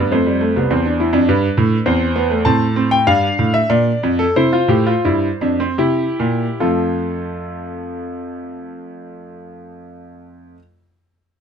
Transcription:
0.00 0.12 G2 medium
0.00 0.12 B3 medium
0.00 0.11 D5 medium
0.12 0.54 F2 medium
0.12 0.26 A3 medium
0.12 1.25 C5 medium
0.27 0.41 G3 medium
0.41 0.55 A3 medium
0.56 0.70 C2 medium
0.56 0.70 B3 medium
0.70 1.13 E2 medium
0.70 0.85 C4 medium
0.85 0.99 D4 medium
1.00 1.14 E4 medium
1.13 1.28 F2 loud
1.13 1.84 D4 medium
1.29 1.47 G2 loud
1.29 1.85 B4 medium
1.57 1.75 A2 loud
1.86 2.43 E2 loud
1.86 2.04 C4 medium
1.86 2.43 C5 medium
2.16 2.30 B3 medium
2.30 2.45 A3 medium
2.45 3.04 A2 medium
2.45 2.64 C4 medium
2.45 2.89 A5 loud
2.76 2.95 C4 medium
2.91 3.06 G5 loud
3.07 3.26 G2 medium
3.07 4.32 D4 medium
3.07 3.52 F5 loud
3.39 3.58 A2 medium
3.54 3.69 E5 loud
3.70 3.90 A#2 loud
3.70 4.17 D5 loud
4.03 4.23 F2 loud
4.19 4.35 A4 loud
4.36 4.57 C3 medium
4.36 4.52 E4 medium
4.36 5.75 C5 medium
4.53 4.69 F4 medium
4.68 4.90 A2 loud
4.68 4.86 G4 medium
4.87 5.04 F4 medium
5.05 5.27 G2 medium
5.05 5.27 E4 medium
5.41 5.65 F2 medium
5.41 5.59 D4 medium
5.60 5.78 C4 medium
5.78 6.03 C3 medium
5.78 6.58 E4 medium
5.78 6.57 G4 medium
6.20 6.45 A#2 medium
6.60 10.54 F2 medium
6.60 10.57 F3 medium
6.60 10.57 A3 medium
6.60 10.54 F4 medium
6.60 10.54 A4 medium

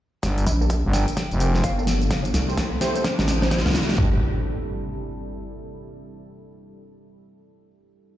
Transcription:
0.23 0.45 G1 loud
0.23 2.09 G3 medium
0.23 2.09 A#3 medium
0.23 2.09 D4 medium
0.23 3.94 A4 medium
0.23 kick loud
0.23 snare soft
0.23 closed hi-hat medium
0.23 tambourine soft
0.23 riser medium
0.38 closed hi-hat medium
0.38 tambourine soft
0.47 0.82 A#1 loud
0.47 open hi-hat loud
0.47 tambourine medium
0.61 0.75 A#3 medium
0.61 0.75 D4 medium
0.61 0.75 G4 medium
0.61 0.75 A4 medium
0.61 tambourine soft
0.70 kick loud
0.70 closed hi-hat medium
0.70 tambourine soft
0.84 1.06 G1 medium
0.93 1.38 A#3 medium
0.93 1.38 D4 medium
0.93 1.38 G4 medium
0.93 1.38 A4 loud
0.93 1.14 G5 medium
0.93 snare medium
0.93 open hi-hat medium
0.93 tambourine medium
1.08 closed hi-hat medium
1.08 tambourine soft
1.17 kick loud
1.17 snare medium
1.17 closed hi-hat medium
1.17 tambourine soft
1.31 1.62 F1 medium
1.31 closed hi-hat soft
1.31 tambourine soft
1.40 1.52 A#3 medium
1.40 1.52 D4 medium
1.40 1.52 G4 medium
1.40 1.52 A#4 medium
1.40 1.61 G5 medium
1.40 open hi-hat loud
1.40 tambourine medium
1.55 snare medium
1.55 tambourine soft
1.64 2.09 G1 medium
1.64 2.16 F5 medium
1.64 kick loud
1.64 closed hi-hat medium
1.64 tambourine soft
1.78 1.86 A#3 medium
1.78 1.86 D4 medium
1.78 1.86 G4 medium
1.78 1.86 A4 loud
1.78 tambourine soft
1.87 snare medium
1.87 open hi-hat medium
1.87 tambourine medium
2.02 closed hi-hat soft
2.02 tambourine soft
2.11 2.33 G1 loud
2.11 3.96 G3 medium
2.11 3.96 C4 medium
2.11 3.96 E4 medium
2.11 kick loud
2.11 snare medium
2.11 closed hi-hat medium
2.11 tambourine soft
2.25 closed hi-hat medium
2.25 tambourine soft
2.34 2.70 C2 loud
2.34 snare medium
2.34 open hi-hat loud
2.34 tambourine medium
2.48 2.62 A3 medium
2.48 2.62 E4 medium
2.48 2.62 G4 medium
2.48 2.62 C5 medium
2.48 tambourine soft
2.57 kick loud
2.57 snare medium
2.57 closed hi-hat medium
2.57 tambourine soft
2.81 2.93 A3 medium
2.81 2.93 E4 medium
2.81 2.93 G4 medium
2.81 2.93 C5 loud
2.81 2.90 C5 medium
2.81 snare medium
2.81 open hi-hat medium
2.81 tambourine medium
2.95 3.01 C5 medium
2.95 closed hi-hat medium
2.95 tambourine soft
3.04 kick loud
3.04 snare medium
3.04 closed hi-hat medium
3.04 tambourine soft
3.19 3.63 A1 loud
3.19 snare medium
3.19 closed hi-hat soft
3.19 tambourine soft
3.28 kick medium
3.28 snare medium
3.28 open hi-hat loud
3.28 tambourine medium
3.42 3.75 C5 loud
3.42 snare medium
3.42 tambourine soft
3.51 kick loud
3.51 snare loud
3.51 closed hi-hat medium
3.51 tambourine soft
3.59 snare medium
3.66 3.97 C2 loud
3.66 snare medium
3.66 tambourine soft
3.70 snare medium
3.75 snare loud
3.75 open hi-hat loud
3.75 tambourine medium
3.82 snare medium
3.89 snare loud
3.89 closed hi-hat soft
3.89 tambourine soft
3.94 snare loud
3.98 4.20 G1 loud
3.98 4.17 A#3 medium
3.98 4.17 D4 medium
3.98 4.17 G4 medium
3.98 4.17 A4 loud
3.98 kick loud
3.98 floor tom loud
3.98 impact medium

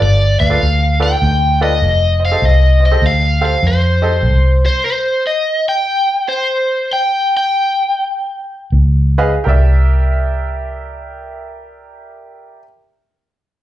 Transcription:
0.02 0.35 G1 medium
0.02 0.39 D5 medium
0.39 0.59 D2 medium
0.39 0.45 B4 soft
0.39 0.46 D5 soft
0.39 1.02 F5 loud
0.50 0.62 F4 medium
0.50 0.61 A4 medium
0.50 0.61 B4 medium
0.50 0.62 D5 medium
0.62 1.15 D2 medium
1.00 1.11 F4 medium
1.00 1.11 A4 medium
1.00 1.11 B4 medium
1.00 1.11 D5 medium
1.00 1.62 G5 loud
1.22 1.83 D2 medium
1.61 1.72 F4 medium
1.61 1.72 A4 medium
1.61 1.72 B4 medium
1.61 1.72 D5 medium
1.61 2.25 D#5 loud
1.82 2.35 F1 medium
2.19 2.25 C5 soft
2.19 2.25 D#5 soft
2.25 2.45 F5 medium
2.31 2.42 G4 medium
2.31 2.43 A4 medium
2.31 2.43 C5 medium
2.31 2.43 D#5 medium
2.42 2.95 C2 medium
2.42 2.85 D#5 medium
2.80 2.86 C5 soft
2.80 2.86 D#5 soft
2.86 3.05 D#5 medium
2.91 3.03 G4 medium
2.91 3.02 A4 medium
2.91 3.02 C5 medium
2.91 3.02 D#5 medium
3.02 3.55 D2 medium
3.06 3.43 F5 medium
3.41 3.52 G4 medium
3.41 3.52 A4 medium
3.41 3.52 C5 medium
3.41 3.52 F5 medium
3.45 3.66 F5 medium
3.63 4.24 F2 medium
3.67 4.65 C5 medium
4.02 4.12 G4 medium
4.02 4.13 A4 medium
4.02 4.12 C5 medium
4.02 4.12 D#5 medium
4.23 4.68 C2 medium
4.66 4.84 C5 medium
4.86 5.24 C5 medium
5.27 5.65 D#5 medium
5.69 6.27 G5 loud
6.29 6.90 C5 medium
6.93 7.34 G5 medium
7.37 8.70 G5 medium
8.72 9.37 C#2 medium
9.18 9.32 G#4 medium
9.18 9.32 B4 medium
9.18 9.32 D#5 medium
9.18 9.32 F5 medium
9.44 12.60 C2 medium
9.44 12.58 G4 medium
9.44 12.59 A#4 medium
9.44 12.61 D5 medium
9.49 12.63 E5 medium

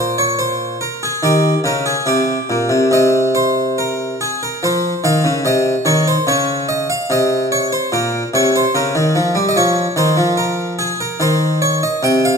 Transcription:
0.00 0.75 A#2 medium
0.00 0.18 C5 medium
0.18 0.38 C#5 medium
0.39 0.80 C5 medium
0.81 1.01 A#4 medium
1.03 1.23 G#4 medium
1.23 1.52 D#3 medium
1.23 1.58 G4 medium
1.64 1.94 C#3 medium
1.64 1.85 A#4 medium
1.86 2.06 G#4 medium
2.06 2.36 C3 soft
2.06 2.91 G4 medium
2.50 2.69 A#2 medium
2.69 2.90 C3 medium
2.91 4.13 C3 medium
2.91 3.35 D#5 medium
3.35 3.77 C5 medium
3.78 4.19 A#4 medium
4.21 4.41 G#4 medium
4.43 4.62 A#4 medium
4.63 4.92 F3 medium
4.63 5.04 C5 medium
5.04 5.22 D#3 medium
5.04 5.38 F5 medium
5.24 5.43 C#3 medium
5.45 5.74 C3 medium
5.45 5.85 D#5 medium
5.85 6.14 D#3 medium
5.85 6.05 C#5 medium
6.08 6.26 C5 medium
6.27 6.86 C#3 medium
6.27 6.68 C#5 medium
6.69 6.88 D#5 medium
6.90 7.09 F5 medium
7.10 7.69 C3 medium
7.10 7.45 D#5 medium
7.52 7.72 C#5 medium
7.72 7.92 C5 medium
7.92 8.21 A#2 medium
7.92 8.27 A#4 medium
8.34 8.63 C3 medium
8.34 8.54 C#5 medium
8.56 8.75 C5 medium
8.75 8.94 C#3 medium
8.75 9.50 A#4 medium
8.95 9.14 D#3 medium
9.15 9.35 F3 medium
9.35 9.54 G3 medium
9.49 9.55 D#5 medium
9.56 9.85 F3 medium
9.56 9.97 C#5 medium
9.96 10.16 D#3 medium
9.96 10.38 C5 medium
10.17 10.91 F3 medium
10.37 10.72 A#4 medium
10.79 10.99 G#4 medium
11.01 11.20 A#4 medium
11.20 11.79 D#3 medium
11.20 11.62 C5 medium
11.62 11.82 C#5 medium
11.83 12.03 D#5 medium
12.03 12.38 C3 medium
12.03 12.24 G5 medium
12.25 12.38 F5 medium

